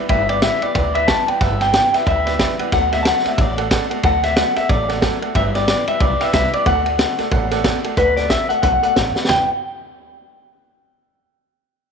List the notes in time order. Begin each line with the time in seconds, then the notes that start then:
0.09 G1 G2 D3 E3 G3 B3 G4 B4 D5 E5 G5, kick, ride
0.28 E3 G3 B3 G4 B4 D5 G5, ride
0.42 G2 D3 E3 G3 B3 G4 B4 D5 E5 F#5, snare, ride
0.61 E3 G3 B3 G4 B4 D5 G5, muted upright bass stroke, ride
0.74 D2 E3 G3 B3 G4 B4 D5 G5, kick, ride
0.94 E3 G3 B3 G4 B4 D5 E5, ride
1.07 G2 D3 E3 G3 B3 G4 B4 D5 G5 A5, kick, snare, ride
1.27 E3 G3 B3 G4 B4 D5 F#5 G5, muted upright bass stroke, ride
1.40 G1 G2 D3 E3 G3 B3 G4 B4 D5 E5 F#5, kick, snare, ride
1.60 E3 G3 B3 G4 B4 D5 G5, snare, ride
1.72 G2 D3 E3 G3 B3 G4 B4 D5 G5, snare, ride
1.93 E3 G3 B3 G4 B4 D5 E5 G5, muted upright bass stroke, snare, ride
2.06 D2 E3 G3 B3 G4 E5 G5, kick, ride
2.25 E3 G3 B3 G4 B4 D5 E5, snare, ride
2.39 G2 D3 E3 G3 B3 G4 B4 D5 G5, kick, snare, ride
2.59 E3 G3 B3 G4 B4 D5 F#5, muted upright bass stroke, ride
2.72 D2 D3 F#3 A3 B3 F#4 A4 D5 F#5, kick, snare, ride
2.92 A3 B3 F#4 A4 D5 E5 F#5, snare, ride
3.03 D3 F#3 A3 B3 A4 D5 F#5 A5, snare, ride
3.07 F#4 F#5
3.25 A3 B3 F#4 A4 D5 E5 F#5, muted upright bass stroke, snare, ride
3.38 A1 F#3 A3 B3 F#4 A4 D5 F#5, kick, ride
3.58 A3 B3 F#4 A4 D5 F#5, ride
3.71 D3 F#3 A3 B3 F#4 A4 D5 F#5, kick, snare, ride
3.90 A3 B3 F#4 A4 D5 F#5, muted upright bass stroke, ride
4.03 D2 D3 F#3 A3 B3 F#4 A4 D5 F#5 A5, kick, ride
4.23 A3 B3 F#4 A4 D5 E5 F#5, snare, ride
4.36 D3 F#3 A3 B3 F#4 A4 D5 F#5, snare, ride
4.56 A3 B3 F#4 A4 D5 E5 F#5, muted upright bass stroke, snare, ride
4.69 A1 F#3 A3 B3 F#4 A4 D5 E5, kick, ride
4.89 A3 B3 F#4 A4 D5 F#5, snare, ride
5.02 D3 F#3 A3 B3 F#4 A4 D5 F#5, kick, snare, ride
5.21 A3 B3 F#4 A4 D5 F#5, muted upright bass stroke, ride
5.34 G1 G2 D3 E3 G3 B3 G4 B4 D5 E5 G5, kick, ride
5.54 E3 G3 B3 G4 B4 D5 G5, snare, ride
5.68 G2 D3 E3 G3 B3 G4 B4 D5 G5, snare, ride
5.87 E3 G3 B3 G4 B4 D5 E5 G5, muted upright bass stroke, ride
6.00 B1 E3 G3 B3 G4 B4 D5 G5, kick, ride
6.20 E3 G3 B3 G4 B4 D5 E5 G5, muted upright bass stroke, snare, ride
6.33 C2 G2 D3 E3 G3 B3 G4 B4 D5 E5 G5, kick, snare, ride
6.53 E3 G3 B3 G4 B4 D5 E5, muted upright bass stroke, ride
6.66 D2 D3 F#3 A3 B3 F#4 A4 D5 F#5, kick, ride
6.85 A3 B3 F#4 A4 D5 F#5, ride
6.98 D3 F#3 A3 B3 F#4 A4 D5 F#5, snare, ride
7.18 A3 B3 F#4 A4 D5 F#5, muted upright bass stroke, snare, ride
7.31 A1 F#3 A3 B3 F#4 A4 D5 F#5, kick, ride
7.51 A3 B3 F#4 A4 D5 F#5, snare, ride
7.64 D3 F#3 A3 B3 F#4 A4 D5 F#5, kick, snare, ride
7.83 A3 B3 F#4 A4 D5 F#5, muted upright bass stroke, ride
7.97 D2 D3 F#3 A3 B3 F#4 A4 B4 D5 F#5, kick, closed hi-hat
8.17 A3 B3 F#4 A4 D5 F#5, snare, closed hi-hat
8.29 F#3 B3 A4 E5 F#5, kick, snare, closed hi-hat
8.49 A3 B3 F#4 A4 D5 F#5 A5, muted upright bass stroke, closed hi-hat
8.62 B1 D3 F#3 A3 B3 F#4 A4 D5 F#5, kick, closed hi-hat
8.82 A3 B3 F#4 A4 D5 F#5, muted upright bass stroke, closed hi-hat
8.95 A1 F#3 A3 B3 F#4 A4 D5 F#5, snare, closed hi-hat
9.15 A3 B3 F#4 A4 D5 F#5, muted upright bass stroke, snare
9.25 B4 D5 G5, snare
9.29 G1 G2 D3 E3 G3 B3 E4 G5, snare, floor tom, ride bell